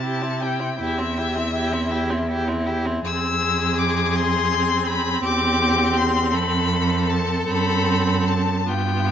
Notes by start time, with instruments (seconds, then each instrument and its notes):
Already playing: cello C3, violin A5
0.02 viola E4, violin G4
0.22 viola C4, violin E4
0.40 viola E4, violin G4 G5
0.59 viola C4, violin E4
0.79 cello E2, viola E4, violin G4 E5
0.98 viola C4, violin E4
1.17 viola E4, violin G4
1.36 viola C4, violin E4
1.54 viola E4, violin G4
1.73 viola C4, violin E4
1.91 viola E4, violin G4
2.11 viola C4, violin E4
2.29 viola E4, violin G4
2.48 viola C4, violin E4
2.66 viola E4, violin G4
2.85 viola C4, violin E4
3.04 cello F2, viola C4, violin G#4 E6
3.78 violin D6
4.15 violin C6
4.89 violin B5
5.23 cello E2, violin G4 D6
5.97 violin C6
6.33 cello F2, violin A4 B5
7.09 violin A5
7.47 cello F#2, viola C4, violin B5
8.27 violin A5
8.67 cello G2, viola B3, violin F4 G5